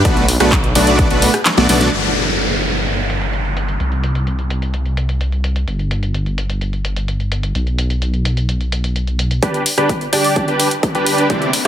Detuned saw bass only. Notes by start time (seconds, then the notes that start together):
0.05 B1
0.40 B1
0.75 B1
1.11 B1
1.58 B1
1.69 B1
1.93 G1
3.80 C2
5.68 G1
7.55 B1